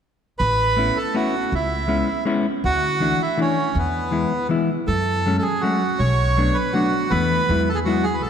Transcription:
0.39 0.89 A1 medium
0.39 0.98 B4 medium
0.76 0.96 A3 soft
0.76 0.96 B3 soft
0.76 0.97 C#4 soft
0.76 0.97 E4 soft
0.96 1.16 A4 medium
1.14 1.34 A3 medium
1.14 1.34 B3 medium
1.14 1.34 C#4 soft
1.14 1.34 E4 medium
1.14 1.54 F#4 medium
1.52 2.01 C#2 medium
1.52 2.24 E4 medium
1.88 2.08 G#3 medium
1.88 2.08 B3 soft
1.88 2.08 C#4 soft
1.88 2.08 E4 soft
2.25 2.45 G#3 medium
2.25 2.45 B3 medium
2.25 2.46 C#4 medium
2.25 2.46 E4 medium
2.64 3.12 D2 medium
2.64 3.22 F#4 loud
3.00 3.20 E3 soft
3.00 3.20 A3 soft
3.00 3.20 D4 soft
3.00 3.20 E4 soft
3.22 3.40 E4 medium
3.38 3.57 E3 medium
3.38 3.57 A3 soft
3.38 3.77 C#4 medium
3.38 3.57 D4 soft
3.38 3.57 E4 medium
3.75 4.24 E2 medium
3.75 4.47 B3 medium
4.11 4.31 E3 soft
4.11 4.31 G#3 soft
4.11 4.31 B3 soft
4.11 4.31 E4 medium
4.49 4.69 E3 medium
4.49 4.69 G#3 medium
4.49 4.69 B3 medium
4.49 4.70 E4 medium
4.87 5.36 F#2 medium
4.87 5.37 A4 medium
5.26 5.45 F#3 soft
5.26 5.45 G#3 soft
5.26 5.45 A3 soft
5.26 5.45 C#4 soft
5.38 5.62 G#4 medium
5.38 5.44 A4 soft
5.61 5.82 F#3 soft
5.61 5.82 G#3 soft
5.61 5.82 A3 soft
5.61 5.82 C#4 soft
5.61 6.00 F#4 medium
5.99 6.48 B1 medium
5.99 6.57 C#5 medium
6.37 6.56 F#3 soft
6.37 6.56 A3 soft
6.37 6.56 B3 soft
6.37 6.56 D4 medium
6.54 6.74 B4 medium
6.73 6.93 F#3 medium
6.73 6.93 A3 soft
6.73 6.93 B3 soft
6.73 6.93 D4 medium
6.73 7.12 F#4 medium
7.10 7.35 E2 medium
7.10 7.41 E3 medium
7.10 7.41 A3 soft
7.10 7.41 B3 medium
7.10 7.41 E4 medium
7.10 7.69 B4 medium
7.49 8.23 E2 medium
7.49 7.68 F#3 soft
7.49 7.68 G#3 soft
7.49 7.68 B3 soft
7.49 7.69 E4 medium
7.69 7.78 A4 medium
7.75 7.79 G#4 medium
7.85 8.05 F#3 medium
7.85 8.05 G#3 medium
7.85 8.05 B3 soft
7.85 8.06 E4 medium
7.85 8.05 F#4 medium
8.03 8.16 G#4 medium
8.14 8.22 B4 medium
8.22 8.30 A1 medium
8.22 8.30 A4 medium

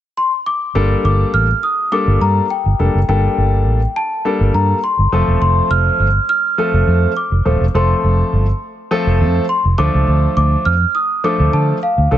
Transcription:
0.17 0.30 C6 medium
0.46 1.04 D6 loud
0.75 0.93 G1 loud
0.75 1.46 G3 medium
0.75 1.46 A#3 medium
0.75 1.46 D4 medium
0.75 1.46 A4 medium
1.05 1.23 G1 loud
1.05 1.35 D6 medium
1.34 1.52 A1 medium
1.34 1.61 F6 loud
1.63 1.93 D#6 medium
1.92 2.45 G3 medium
1.92 2.45 A#3 medium
1.92 2.45 D4 medium
1.92 2.45 A4 medium
1.92 2.22 D6 loud
2.07 2.16 G1 medium
2.21 2.39 G2 medium
2.21 2.48 A#5 medium
2.50 3.08 G5 medium
2.66 2.74 G1 medium
2.79 2.89 F1 medium
2.79 2.98 G3 medium
2.79 2.98 A#3 medium
2.79 2.98 D4 medium
2.79 2.98 A4 medium
2.95 3.03 F#1 medium
3.08 3.27 G1 medium
3.08 3.79 G3 medium
3.08 3.79 A#3 medium
3.08 3.79 D4 medium
3.08 3.79 A4 medium
3.08 3.99 G5 medium
3.38 3.67 G1 loud
3.67 3.85 A1 medium
3.96 4.56 A5 medium
4.25 4.78 G3 medium
4.25 4.78 A#3 medium
4.25 4.78 D4 medium
4.25 4.78 A4 medium
4.40 4.49 G1 medium
4.54 4.72 G2 loud
4.54 4.81 A#5 medium
4.84 5.41 C6 medium
4.99 5.07 G1 medium
5.12 5.22 F1 medium
5.12 6.06 F3 medium
5.12 6.06 A3 medium
5.12 6.06 C4 medium
5.12 6.06 A4 medium
5.28 5.36 E1 medium
5.41 5.59 F1 loud
5.41 5.69 C6 medium
5.70 5.89 F1 medium
5.70 6.25 F6 medium
6.00 6.18 G1 medium
6.29 7.19 F6 loud
6.58 7.11 F3 medium
6.58 7.11 A3 medium
6.58 7.11 C4 medium
6.58 7.11 A4 medium
6.74 6.82 F1 medium
6.87 7.05 F2 medium
7.17 7.76 D6 medium
7.32 7.40 F1 medium
7.45 7.55 D#1 medium
7.45 7.64 F3 medium
7.45 7.64 A3 medium
7.45 7.64 C4 medium
7.45 7.64 A4 medium
7.61 7.69 E1 medium
7.74 7.92 F1 loud
7.74 8.45 F3 medium
7.74 8.45 A3 medium
7.74 8.45 C4 medium
7.74 8.45 A4 medium
7.74 8.29 C6 medium
8.04 8.22 F1 loud
8.33 8.51 G1 medium
8.91 9.44 F3 medium
8.91 9.44 A3 medium
8.91 9.44 C4 medium
8.91 9.44 A4 loud
9.07 9.22 F1 medium
9.20 9.38 F2 medium
9.49 9.62 C6 medium
9.65 9.73 F1 medium
9.78 9.88 D2 medium
9.78 10.72 F3 medium
9.78 10.72 A3 medium
9.78 10.72 D4 medium
9.78 10.72 A4 medium
9.78 10.36 D6 loud
9.94 10.03 C#2 medium
10.08 10.26 D2 medium
10.37 10.55 D2 medium
10.37 10.67 D6 medium
10.65 10.84 F2 medium
10.65 10.96 F6 loud
10.95 11.25 D#6 medium
11.24 11.77 F3 medium
11.24 11.77 A3 medium
11.24 11.77 D4 medium
11.24 11.77 A4 medium
11.24 11.54 D6 loud
11.40 11.48 D2 medium
11.53 11.71 D3 medium
11.53 11.66 A5 medium
11.83 12.18 F5 medium
11.98 12.06 D2 medium
12.11 12.18 C2 medium
12.11 12.18 F3 medium
12.11 12.18 A3 medium
12.11 12.18 D4 medium
12.11 12.18 A4 medium

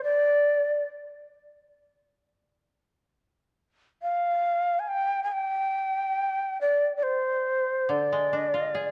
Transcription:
0.04 0.86 D5 medium
4.02 4.81 F5 medium
4.79 4.89 G#5 medium
4.88 5.23 G5 medium
5.24 5.34 G#5 medium
5.32 6.60 G5 medium
6.61 6.95 D5 medium
6.97 7.04 D5 medium
7.03 7.91 C5 medium
7.89 8.91 D3 soft
7.89 8.34 D5 medium
8.12 8.91 G#3 soft
8.33 8.91 D4 soft
8.33 8.47 D#5 medium
8.47 8.61 D5 medium
8.54 8.91 F4 soft
8.61 8.72 D#5 medium
8.72 8.91 G#4 soft
8.72 8.91 D5 medium

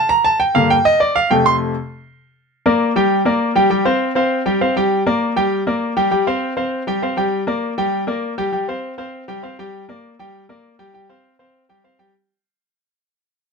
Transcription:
0.09 0.24 A#5 loud
0.24 0.39 A5 loud
0.40 0.54 G5 medium
0.54 0.75 G2 medium
0.54 0.75 D3 medium
0.54 0.75 A#3 medium
0.54 0.70 F5 medium
0.70 0.85 G5 loud
0.85 1.00 D#5 loud
1.00 1.15 D5 medium
1.16 1.30 F5 loud
1.30 1.73 F2 medium
1.30 1.73 C3 medium
1.30 1.74 A3 medium
1.30 1.45 G5 medium
1.46 1.55 C6 loud
2.66 2.90 A#3 medium
2.66 2.91 A#4 medium
2.66 2.91 D5 medium
2.96 3.20 G3 medium
2.96 3.21 G4 medium
2.96 3.21 G5 medium
3.25 3.50 A#3 medium
3.25 3.51 A#4 medium
3.25 3.51 D5 medium
3.55 3.68 G3 loud
3.55 3.68 G4 medium
3.55 3.68 G5 medium
3.70 3.83 G3 medium
3.70 3.83 G4 medium
3.70 3.83 G5 medium
3.85 4.10 C4 medium
3.85 4.10 C5 medium
3.85 4.11 F5 medium
4.15 4.40 C4 medium
4.15 4.41 C5 medium
4.15 4.41 F5 medium
4.46 4.58 G3 medium
4.46 4.59 G4 medium
4.46 4.59 G5 medium
4.61 4.74 C4 medium
4.61 4.74 C5 medium
4.61 4.74 F5 medium
4.76 5.01 G3 medium
4.76 5.01 G4 medium
4.76 5.02 G5 medium
5.06 5.31 A#3 medium
5.06 5.31 A#4 medium
5.06 5.31 D5 medium
5.36 5.61 G3 medium
5.36 5.61 G4 loud
5.36 5.61 G5 loud
5.67 5.92 A#3 medium
5.67 5.92 A#4 medium
5.67 5.92 D5 medium
5.97 6.09 G3 loud
5.97 6.09 G4 loud
5.97 6.09 G5 loud
6.11 6.24 G3 medium
6.11 6.24 G4 medium
6.11 6.24 G5 medium
6.27 6.52 C4 medium
6.27 6.52 C5 medium
6.27 6.52 F5 medium
6.57 6.82 C4 medium
6.57 6.82 C5 medium
6.57 6.82 F5 medium
6.87 7.00 G3 medium
6.87 7.00 G4 medium
6.87 7.00 G5 loud
7.02 7.15 C4 medium
7.02 7.15 C5 medium
7.02 7.15 F5 medium
7.17 7.42 G3 loud
7.17 7.42 G4 medium
7.17 7.42 G5 medium
7.47 7.72 A#3 medium
7.47 7.72 A#4 medium
7.47 7.72 D5 medium
7.78 8.02 G3 loud
7.78 8.03 G4 medium
7.78 8.03 G5 loud
8.07 8.32 A#3 medium
8.07 8.32 A#4 medium
8.07 8.33 D5 medium
8.38 8.50 G3 medium
8.38 8.50 G4 loud
8.38 8.50 G5 loud
8.52 8.65 G3 medium
8.52 8.65 G4 medium
8.52 8.65 G5 medium
8.68 8.93 C4 medium
8.68 8.93 C5 medium
8.68 8.93 F5 medium
8.98 9.23 C4 medium
8.98 9.23 C5 medium
8.98 9.23 F5 medium
9.28 9.40 G3 loud
9.28 9.41 G4 medium
9.28 9.41 G5 loud
9.43 9.55 C4 medium
9.43 9.56 C5 medium
9.43 9.56 F5 medium
9.59 9.83 G3 loud
9.59 9.84 G4 medium
9.59 9.84 G5 loud
9.89 10.13 A#3 medium
9.89 10.13 A#4 medium
9.89 10.14 D5 medium
10.19 10.44 G3 medium
10.19 10.44 G4 medium
10.19 10.44 G5 loud
10.49 10.74 A#3 medium
10.49 10.74 A#4 medium
10.49 10.74 D5 medium
10.79 10.91 G3 loud
10.79 10.91 G4 loud
10.79 10.91 G5 medium
10.94 11.06 G3 medium
10.94 11.07 G4 medium
10.94 11.07 G5 medium
11.09 11.34 C4 medium
11.09 11.34 C5 medium
11.09 11.34 F5 medium
11.39 11.64 C4 medium
11.39 11.64 C5 medium
11.39 11.64 F5 medium
11.69 11.82 G3 medium
11.69 11.82 G4 medium
11.69 11.82 G5 medium
11.84 11.97 C4 medium
11.84 11.97 C5 medium
11.84 11.97 F5 medium
11.99 12.11 G3 medium
11.99 12.12 G4 medium
11.99 12.12 G5 medium

